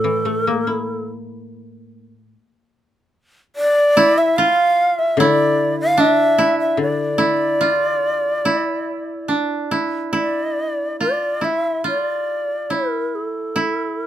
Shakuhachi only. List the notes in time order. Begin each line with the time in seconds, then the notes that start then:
Already playing: A4
3.56 D5
4.18 E5
4.37 F5
4.99 E5
5.19 D5
5.81 F5
6.00 E5
6.60 E5
6.82 D5
10.15 D5
11.01 D5
11.45 E5
11.88 D5
12.74 A#4
13.15 A4